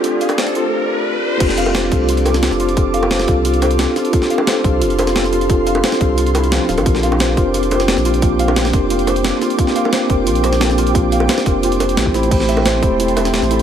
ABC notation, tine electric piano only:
X:1
M:4/4
L:1/8
Q:1/4=176
K:F
V:1 name="Tine electric piano"
[CDFGA]3 [CDFGA] z4 | [CDFGA]3 [CDFGA]3 [CDFGA]2 | [CDFGA]3 [CDFGA]3 [CDFGA]2 | [CDFGA]3 [CDFGA]3 [CDFGA]2 |
[CDFGA]3 [CDFGA]3 [F,CDGc]2 | [CDFGB]3 [CDFGB]3 [B,CDFG]2 | [B,CDFG]3 [CDFGB]3 [B,CDFG]2 | [B,CDFG]3 [CDFGB]3 [B,CDFG]2 |
[B,CDFG]3 [CDFGB]3 [A,CEGc]2 | [A,CEGc]3 [A,CEGc]3 [A,CEGc]2 |]